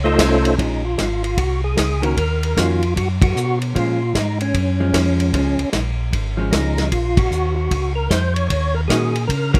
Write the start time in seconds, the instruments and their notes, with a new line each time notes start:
Already playing: tonewheel organ C#2
0.04 tonewheel organ A3 D#4 F4 A4 C5, hollow-body jazz guitar D#5
0.18 tonewheel organ C2 C#4, kick, snare, hi-hat pedal, ride
0.45 ride
0.58 tonewheel organ A#1 D#4, hollow-body jazz guitar G#3 C#4 F4, kick, ride
0.85 tonewheel organ F4
0.98 tonewheel organ G#1 F4, kick, snare, hi-hat pedal, ride
1.24 tonewheel organ F4, ride
1.37 tonewheel organ C2 F#4, kick, ride
1.64 tonewheel organ G#4
1.77 tonewheel organ C#2 G#4, kick, snare, hi-hat pedal, ride
2.02 hollow-body jazz guitar D#3 A#3 C#4 F#4, tonewheel organ A#4, ride
2.17 tonewheel organ D#2 A#4, kick, ride
2.43 ride
2.57 tonewheel organ F2 F4, hollow-body jazz guitar D#3 A#3 C#4 F#4, kick, snare, hi-hat pedal, ride
2.82 ride
2.96 tonewheel organ F#2 F#4, kick, ride
3.22 tonewheel organ F#4, kick, ride
3.36 tonewheel organ B2, hi-hat pedal
3.62 ride
3.75 tonewheel organ A#2 F4, hollow-body jazz guitar F3 G#3 C#4, kick, ride
4.15 tonewheel organ G#2 D#4, kick, snare, hi-hat pedal, ride
4.40 tonewheel organ C#4, ride
4.54 tonewheel organ F#2, kick, ride
4.80 hollow-body jazz guitar F3 G#3 C#4
4.94 tonewheel organ F2, kick, snare, hi-hat pedal, ride
5.20 ride
5.33 tonewheel organ C#2, hollow-body jazz guitar F3 G#3 C#4, kick, ride
5.58 tonewheel organ C#2, ride
5.73 tonewheel organ A#1, kick, snare, hi-hat pedal, ride
6.13 tonewheel organ G#1, kick, ride
6.37 hollow-body jazz guitar F3 G#3 C#4
6.51 tonewheel organ C#2 D#4, kick, snare, hi-hat pedal, ride
6.78 snare, ride
6.92 tonewheel organ A#1 F4, kick, ride
7.17 tonewheel organ F#4, kick, ride
7.30 tonewheel organ D#2, hi-hat pedal
7.56 tonewheel organ F#4
7.71 tonewheel organ C#2, kick, ride
7.95 tonewheel organ A#4
8.10 tonewheel organ F2 C5, kick, snare, hi-hat pedal, ride
8.34 tonewheel organ C#5, ride
8.48 tonewheel organ D#2 C#5, kick, ride
8.74 tonewheel organ A#4
8.88 tonewheel organ A#2 G#4, hollow-body jazz guitar D#3 A#3 C#4 F#4, kick, snare, hi-hat pedal, ride
9.15 ride
9.27 tonewheel organ C#3 A#4, kick, ride
9.53 hollow-body jazz guitar D#3 A#3 C#4 F#4, tonewheel organ A#4, kick, ride